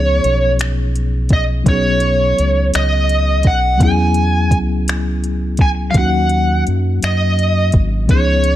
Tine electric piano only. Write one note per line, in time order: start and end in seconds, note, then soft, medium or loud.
0.00 1.64 F3 soft
0.00 1.62 B3 medium
0.00 1.62 C#4 soft
0.00 1.64 D#4 soft
0.00 1.64 G#4 medium
1.64 3.75 F#3 medium
1.64 3.76 B3 soft
1.64 3.77 C#4 soft
1.69 3.78 D#4 soft
1.69 3.78 G#4 medium
3.78 5.89 F#3 medium
3.78 5.90 B3 soft
3.78 5.91 C#4 medium
3.83 5.92 E4 medium
3.83 5.93 G#4 medium
5.92 8.03 F#3 medium
5.92 8.04 A#3 soft
5.92 8.05 C#4 soft
5.97 8.06 D#4 soft
5.97 8.07 F#4 medium
8.06 8.14 E3 soft
8.06 8.56 B3 soft
8.06 8.56 C#4 medium
8.12 8.56 F3 medium
8.12 8.56 D#4 soft
8.12 8.56 G#4 medium